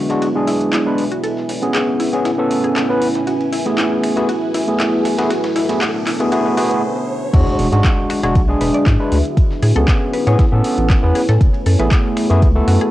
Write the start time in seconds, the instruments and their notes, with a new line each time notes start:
Already playing: ambient pad B3 E4 F#4 G#4 B4 D5 E5, riser
0.10 analog synth bass E1, tine electric piano G#3 D4 F#4, ambient pad G#5, snare, closed hi-hat
0.22 analog synth bass B1, synth arpeggio sound F#4, closed hi-hat, ride
0.35 tine electric piano G#3 D4 G#4
0.47 synth arpeggio sound E4, snare, open hi-hat, ride
0.61 closed hi-hat
0.73 analog synth bass G#2, synth arpeggio sound E4, snare, clap, closed hi-hat, ride
0.86 tine electric piano G#3 D4 B4
0.98 analog synth bass D2, open hi-hat, ride
1.12 synth arpeggio sound F#4, closed hi-hat
1.23 ambient pad A3 C#4 E4 B4 G#5, synth arpeggio sound A4, closed hi-hat, ride
1.37 snare
1.49 analog synth bass A2, open hi-hat, ride
1.62 analog synth bass C#2, tine electric piano B3 C#4 G#4, closed hi-hat
1.74 synth arpeggio sound G#4, snare, clap, closed hi-hat, ride
2.00 synth arpeggio sound E4, open hi-hat, ride
2.13 analog synth bass A2, tine electric piano B3 C#4 G#4, closed hi-hat, ride
2.25 synth arpeggio sound E4, snare, closed hi-hat, ride
2.38 analog synth bass A2, tine electric piano B3 C#4 A4
2.51 open hi-hat, ride
2.64 analog synth bass A1, synth arpeggio sound G#4, closed hi-hat
2.76 synth arpeggio sound A4, snare, clap, closed hi-hat, ride
2.89 analog synth bass E2, tine electric piano B3 C#4 B4
3.02 open hi-hat, ride
3.15 analog synth bass A2, snare, closed hi-hat
3.27 analog synth bass F#1, ambient pad A3 F#4, synth arpeggio sound F#4, closed hi-hat, ride
3.41 ride
3.52 analog synth bass F#2, synth arpeggio sound E4, open hi-hat, ride
3.65 analog synth bass A1, tine electric piano A3 B3 E4 G#4, snare, closed hi-hat
3.78 synth arpeggio sound E4, snare, clap, closed hi-hat, ride
4.03 finger snap, open hi-hat, ride
4.16 analog synth bass F#2, tine electric piano A3 B3 E4 G#4, synth arpeggio sound F#4, snare, closed hi-hat
4.29 analog synth bass C#2, synth arpeggio sound F#4, closed hi-hat, ride
4.54 analog synth bass F#2, synth arpeggio sound E4, snare, open hi-hat, ride
4.67 tine electric piano A3 B3 E4 G#4, closed hi-hat
4.80 synth arpeggio sound E4, snare, clap, closed hi-hat, ride
5.05 snare, open hi-hat, ride
5.18 tine electric piano A3 B3 E4 G#4, synth arpeggio sound F#4, snare, closed hi-hat, ride
5.30 ambient pad B3 D4 A4 C#5, synth arpeggio sound F#4, snare, closed hi-hat, ride
5.44 snare, ride
5.56 analog synth bass B2, synth arpeggio sound E4, ambient pad A5, snare, open hi-hat, ride
5.69 analog synth bass D2, tine electric piano A3 B3 E4 G#4, snare, closed hi-hat, ride
5.81 synth arpeggio sound F#4, snare, clap, closed hi-hat, ride
6.07 synth arpeggio sound E4, finger snap, clap, open hi-hat, ride
6.20 analog synth bass B2, tine electric piano A3 B3 E4 G#4, closed hi-hat, ride
6.32 tine electric piano A3 B3 E4 G#4, synth arpeggio sound F#4, closed hi-hat, ride
6.46 analog synth bass B2
6.57 analog synth bass F#2, tine electric piano A3 B3 E4 G#4, synth arpeggio sound F#4, open hi-hat, ride
6.71 closed hi-hat
7.33 analog synth bass E2, tine electric piano G#3 D4 F#4, ambient pad D4 F#4 G#4 B4 E5, synth arpeggio sound E4, kick, closed hi-hat, crash, ride, impact
7.47 ride
7.59 analog synth bass E1, open hi-hat, ride
7.72 analog synth bass G#2, tine electric piano G#3 D4 F#4, snare, closed hi-hat
7.85 kick, snare, clap, closed hi-hat, ride
8.10 synth arpeggio sound F#4, finger snap, open hi-hat, ride
8.23 analog synth bass E1, tine electric piano G#3 D4 F#4, synth arpeggio sound G#4, snare, closed hi-hat
8.35 analog synth bass B1, kick, closed hi-hat, ride
8.48 tine electric piano G#3 D4 G#4
8.61 analog synth bass E1, synth arpeggio sound B4, snare, open hi-hat, ride
8.74 synth arpeggio sound D5, closed hi-hat
8.86 analog synth bass G#2, synth arpeggio sound E4, kick, snare, clap, closed hi-hat, ride
8.99 tine electric piano G#3 D4 B4
9.12 analog synth bass D2, open hi-hat, ride
9.25 closed hi-hat
9.37 ambient pad A3 E4 C#5 G#5, kick, closed hi-hat, ride
9.51 snare
9.63 analog synth bass A2, synth arpeggio sound G#4, open hi-hat, ride
9.76 analog synth bass C#2, tine electric piano B3 C#4 G#4, synth arpeggio sound A4
9.88 kick, snare, clap, closed hi-hat, ride
10.13 synth arpeggio sound B4, open hi-hat, ride
10.26 analog synth bass A2, tine electric piano B3 C#4 G#4, synth arpeggio sound C#5, closed hi-hat, ride
10.39 synth arpeggio sound E4, kick, snare, closed hi-hat, ride
10.52 analog synth bass A2, tine electric piano B3 C#4 A4
10.64 open hi-hat, ride
10.78 analog synth bass A1, closed hi-hat
10.90 kick, snare, clap, closed hi-hat, ride
11.03 analog synth bass E2, tine electric piano B3 C#4 B4
11.15 synth arpeggio sound G#4, open hi-hat, ride
11.29 analog synth bass A2, synth arpeggio sound A4, snare, closed hi-hat
11.41 analog synth bass F#1, ambient pad F#4 E5, kick, closed hi-hat, ride
11.54 ride
11.66 analog synth bass F#2, synth arpeggio sound A4, open hi-hat, ride
11.79 analog synth bass A1, tine electric piano A3 B3 E4 G#4, synth arpeggio sound B4, snare, closed hi-hat
11.91 synth arpeggio sound E4, kick, snare, clap, closed hi-hat, ride
12.17 finger snap, open hi-hat, ride
12.30 analog synth bass F#2, tine electric piano A3 B3 E4 G#4, snare, closed hi-hat
12.42 analog synth bass C#2, kick, closed hi-hat, ride
12.55 tine electric piano A3 B3 E4 A4
12.68 analog synth bass F#2, synth arpeggio sound F#4, snare, open hi-hat, ride
12.81 synth arpeggio sound G#4, closed hi-hat